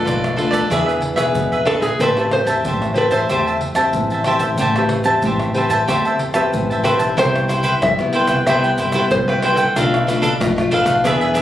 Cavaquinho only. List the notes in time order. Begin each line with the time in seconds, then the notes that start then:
0.05 F4 A4 B4 D5
0.36 F4 A4 B4 D5
0.51 A4 B4 D5
0.70 D4 G#4 B4 E5
0.86 G#4 B4 E5
1.01 muted cavaquinho stroke
1.16 G#4 B4 E5
1.52 G#4 B4 E5
1.65 D4 G#4 B4 E5
1.81 G#4 B4 E5
2.01 G4 C5 E5 A5
2.19 C5 E5 A5
2.33 muted cavaquinho stroke
2.47 C5 E5 A5
2.66 G4 C5 E5 A5
2.96 G4 C5 E5 A5
3.11 C5 E5 A5
3.30 G4 C5 E5 A5
3.47 C5 E5 A5
3.61 muted cavaquinho stroke
3.76 C5 E5 A5
4.12 C5 E5 A5
4.25 G4 C5 E5 A5
4.40 C5 E5 A5
4.59 G4 C5 E5 A5
4.76 C5 E5 A5
4.90 muted cavaquinho stroke
5.05 C5 E5 A5
5.25 G4 C5 E5 A5
5.56 G4 C5 E5 A5
5.71 C5 E5 A5
5.88 G4 C5 E5 A5
6.05 C5 E5 A5
6.20 muted cavaquinho stroke
6.34 C5 E5 A5
6.70 C5 E5 A5
6.84 G4 C5 E5 A5
6.99 C5 E5 A5
7.17 E4 C5 G5
7.48 E4 B4 C5 G5
7.63 E4 B4 C5 G5
8.13 E4 B4 C5 G5
8.29 B4 C5 G5
8.47 E4 B4 C5 G5
8.64 B4 C5 G5
8.78 E4 B4 C5 G5
8.94 E4 B4 C5 G5
9.29 B4 C5 G5
9.43 E4 B4 C5 G5
9.58 B4 C5 G5
9.76 D4 A4 B4 F5
10.07 D4 A4 B4 F5
10.22 D4 A4 B4 F5
10.71 D4 A4 B4 F5
10.86 A4 B4 F5
11.04 D4 G#4 B4 E5
11.21 G#4 B4 E5
11.34 D4 G#4 B4 E5